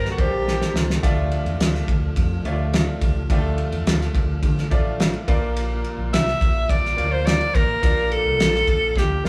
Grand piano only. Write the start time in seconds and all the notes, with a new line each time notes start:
0.18 A#3 D4 G4 C5
1.02 D3 A3 D4 F4 D5
2.45 A3 D4 F4 C#5
2.53 D5
3.30 D3 A3 D4 F4 G4
3.38 A4
4.70 A3 D4 F4 D5
5.28 A#2 A#3 D4 F4 D5
6.96 A#3 D4 F4 C#5
7.04 D5
7.55 A#2
7.82 A#3 D4 F4 D5
9.24 A#3 D4 F4 D5